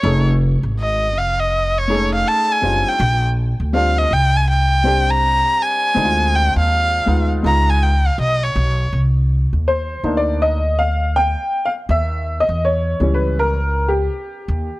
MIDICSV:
0, 0, Header, 1, 4, 480
1, 0, Start_track
1, 0, Key_signature, -3, "minor"
1, 0, Tempo, 740741
1, 27, Time_signature, 4, 2, 24, 8
1, 9589, End_track
2, 0, Start_track
2, 0, Title_t, "Erhu"
2, 0, Program_c, 0, 110
2, 0, Note_on_c, 0, 73, 86
2, 183, Note_off_c, 0, 73, 0
2, 520, Note_on_c, 0, 75, 81
2, 763, Note_on_c, 0, 77, 83
2, 773, Note_off_c, 0, 75, 0
2, 908, Note_on_c, 0, 75, 85
2, 918, Note_off_c, 0, 77, 0
2, 1153, Note_on_c, 0, 73, 93
2, 1163, Note_off_c, 0, 75, 0
2, 1383, Note_off_c, 0, 73, 0
2, 1391, Note_on_c, 0, 77, 92
2, 1479, Note_on_c, 0, 81, 106
2, 1489, Note_off_c, 0, 77, 0
2, 1633, Note_on_c, 0, 80, 96
2, 1642, Note_off_c, 0, 81, 0
2, 1870, Note_on_c, 0, 79, 92
2, 1879, Note_off_c, 0, 80, 0
2, 2102, Note_off_c, 0, 79, 0
2, 2433, Note_on_c, 0, 77, 92
2, 2583, Note_on_c, 0, 75, 92
2, 2593, Note_off_c, 0, 77, 0
2, 2678, Note_on_c, 0, 79, 101
2, 2688, Note_off_c, 0, 75, 0
2, 2829, Note_on_c, 0, 80, 97
2, 2839, Note_off_c, 0, 79, 0
2, 2914, Note_off_c, 0, 80, 0
2, 2917, Note_on_c, 0, 79, 99
2, 3309, Note_on_c, 0, 82, 113
2, 3319, Note_off_c, 0, 79, 0
2, 3642, Note_on_c, 0, 80, 114
2, 3652, Note_off_c, 0, 82, 0
2, 4117, Note_on_c, 0, 79, 101
2, 4126, Note_off_c, 0, 80, 0
2, 4259, Note_off_c, 0, 79, 0
2, 4267, Note_on_c, 0, 77, 100
2, 4715, Note_off_c, 0, 77, 0
2, 4841, Note_on_c, 0, 82, 97
2, 4989, Note_on_c, 0, 80, 99
2, 4999, Note_off_c, 0, 82, 0
2, 5076, Note_on_c, 0, 79, 87
2, 5086, Note_off_c, 0, 80, 0
2, 5231, Note_on_c, 0, 77, 81
2, 5240, Note_off_c, 0, 79, 0
2, 5315, Note_off_c, 0, 77, 0
2, 5320, Note_on_c, 0, 75, 86
2, 5466, Note_on_c, 0, 73, 75
2, 5475, Note_off_c, 0, 75, 0
2, 5792, Note_off_c, 0, 73, 0
2, 9589, End_track
3, 0, Start_track
3, 0, Title_t, "Upright piano"
3, 0, Program_c, 1, 0
3, 18, Note_on_c, 1, 57, 65
3, 23, Note_on_c, 1, 61, 58
3, 30, Note_on_c, 1, 63, 61
3, 38, Note_on_c, 1, 68, 71
3, 207, Note_off_c, 1, 57, 0
3, 209, Note_off_c, 1, 61, 0
3, 213, Note_off_c, 1, 63, 0
3, 217, Note_off_c, 1, 68, 0
3, 1215, Note_on_c, 1, 56, 46
3, 1223, Note_on_c, 1, 61, 55
3, 1231, Note_on_c, 1, 63, 59
3, 1238, Note_on_c, 1, 68, 76
3, 1258, Note_on_c, 1, 57, 64
3, 1273, Note_off_c, 1, 56, 0
3, 1695, Note_on_c, 1, 55, 58
3, 1702, Note_on_c, 1, 60, 57
3, 1709, Note_on_c, 1, 62, 57
3, 1716, Note_on_c, 1, 65, 65
3, 1885, Note_off_c, 1, 55, 0
3, 1889, Note_off_c, 1, 60, 0
3, 1892, Note_off_c, 1, 62, 0
3, 1896, Note_off_c, 1, 65, 0
3, 1908, Note_off_c, 1, 61, 0
3, 1912, Note_off_c, 1, 63, 0
3, 1915, Note_off_c, 1, 68, 0
3, 1925, Note_off_c, 1, 57, 0
3, 2416, Note_on_c, 1, 55, 73
3, 2423, Note_on_c, 1, 60, 68
3, 2429, Note_on_c, 1, 62, 67
3, 2438, Note_on_c, 1, 65, 79
3, 2606, Note_off_c, 1, 55, 0
3, 2609, Note_off_c, 1, 60, 0
3, 2612, Note_off_c, 1, 62, 0
3, 2617, Note_off_c, 1, 65, 0
3, 3134, Note_on_c, 1, 55, 73
3, 3140, Note_on_c, 1, 60, 74
3, 3149, Note_on_c, 1, 62, 69
3, 3155, Note_on_c, 1, 67, 83
3, 3823, Note_off_c, 1, 55, 0
3, 3826, Note_off_c, 1, 60, 0
3, 3830, Note_off_c, 1, 62, 0
3, 3834, Note_off_c, 1, 67, 0
3, 3852, Note_on_c, 1, 56, 70
3, 3859, Note_on_c, 1, 60, 66
3, 3865, Note_on_c, 1, 62, 67
3, 3875, Note_on_c, 1, 63, 63
3, 3916, Note_on_c, 1, 65, 78
3, 3922, Note_off_c, 1, 63, 0
3, 4542, Note_off_c, 1, 56, 0
3, 4546, Note_off_c, 1, 60, 0
3, 4549, Note_off_c, 1, 62, 0
3, 4574, Note_off_c, 1, 65, 0
3, 4574, Note_on_c, 1, 56, 70
3, 4581, Note_on_c, 1, 59, 62
3, 4588, Note_on_c, 1, 63, 58
3, 4597, Note_on_c, 1, 65, 75
3, 4803, Note_off_c, 1, 56, 0
3, 4810, Note_off_c, 1, 59, 0
3, 4813, Note_on_c, 1, 56, 68
3, 4817, Note_off_c, 1, 63, 0
3, 4820, Note_on_c, 1, 59, 62
3, 4826, Note_off_c, 1, 65, 0
3, 4827, Note_on_c, 1, 63, 63
3, 4835, Note_on_c, 1, 65, 75
3, 5119, Note_off_c, 1, 56, 0
3, 5122, Note_off_c, 1, 59, 0
3, 5126, Note_off_c, 1, 63, 0
3, 5130, Note_off_c, 1, 65, 0
3, 6271, Note_on_c, 1, 72, 89
3, 6506, Note_on_c, 1, 63, 52
3, 6510, Note_on_c, 1, 58, 47
3, 6514, Note_on_c, 1, 62, 56
3, 6591, Note_on_c, 1, 74, 87
3, 6598, Note_off_c, 1, 72, 0
3, 6752, Note_on_c, 1, 75, 95
3, 6754, Note_off_c, 1, 74, 0
3, 6846, Note_off_c, 1, 63, 0
3, 6849, Note_off_c, 1, 58, 0
3, 6850, Note_off_c, 1, 62, 0
3, 6990, Note_on_c, 1, 77, 94
3, 6996, Note_off_c, 1, 75, 0
3, 7232, Note_on_c, 1, 79, 106
3, 7235, Note_off_c, 1, 77, 0
3, 7552, Note_on_c, 1, 77, 91
3, 7559, Note_off_c, 1, 79, 0
3, 7587, Note_off_c, 1, 77, 0
3, 7715, Note_on_c, 1, 76, 92
3, 8038, Note_on_c, 1, 75, 92
3, 8040, Note_off_c, 1, 76, 0
3, 8196, Note_on_c, 1, 73, 93
3, 8197, Note_off_c, 1, 75, 0
3, 8428, Note_on_c, 1, 52, 57
3, 8432, Note_on_c, 1, 55, 53
3, 8435, Note_on_c, 1, 61, 63
3, 8517, Note_on_c, 1, 71, 82
3, 8520, Note_off_c, 1, 73, 0
3, 8676, Note_off_c, 1, 71, 0
3, 8679, Note_on_c, 1, 70, 92
3, 8768, Note_off_c, 1, 52, 0
3, 8769, Note_off_c, 1, 55, 0
3, 8771, Note_off_c, 1, 61, 0
3, 8997, Note_on_c, 1, 67, 81
3, 9002, Note_off_c, 1, 70, 0
3, 9589, Note_off_c, 1, 67, 0
3, 9589, End_track
4, 0, Start_track
4, 0, Title_t, "Upright bass"
4, 0, Program_c, 2, 32
4, 23, Note_on_c, 2, 29, 108
4, 359, Note_off_c, 2, 29, 0
4, 409, Note_on_c, 2, 32, 91
4, 741, Note_off_c, 2, 32, 0
4, 741, Note_on_c, 2, 29, 89
4, 1438, Note_off_c, 2, 29, 0
4, 1702, Note_on_c, 2, 30, 85
4, 1831, Note_off_c, 2, 30, 0
4, 1942, Note_on_c, 2, 34, 110
4, 2278, Note_off_c, 2, 34, 0
4, 2331, Note_on_c, 2, 38, 81
4, 2619, Note_off_c, 2, 38, 0
4, 2662, Note_on_c, 2, 36, 85
4, 3506, Note_off_c, 2, 36, 0
4, 3864, Note_on_c, 2, 38, 102
4, 4199, Note_off_c, 2, 38, 0
4, 4251, Note_on_c, 2, 39, 90
4, 4539, Note_off_c, 2, 39, 0
4, 4582, Note_on_c, 2, 38, 78
4, 4791, Note_off_c, 2, 38, 0
4, 4822, Note_on_c, 2, 37, 96
4, 5238, Note_off_c, 2, 37, 0
4, 5301, Note_on_c, 2, 35, 92
4, 5510, Note_off_c, 2, 35, 0
4, 5544, Note_on_c, 2, 35, 99
4, 5752, Note_off_c, 2, 35, 0
4, 5784, Note_on_c, 2, 36, 96
4, 6119, Note_off_c, 2, 36, 0
4, 6174, Note_on_c, 2, 39, 81
4, 6461, Note_off_c, 2, 39, 0
4, 6503, Note_on_c, 2, 38, 78
4, 7346, Note_off_c, 2, 38, 0
4, 7705, Note_on_c, 2, 39, 105
4, 8040, Note_off_c, 2, 39, 0
4, 8091, Note_on_c, 2, 40, 85
4, 8379, Note_off_c, 2, 40, 0
4, 8424, Note_on_c, 2, 37, 81
4, 9119, Note_off_c, 2, 37, 0
4, 9385, Note_on_c, 2, 39, 89
4, 9513, Note_off_c, 2, 39, 0
4, 9589, End_track
0, 0, End_of_file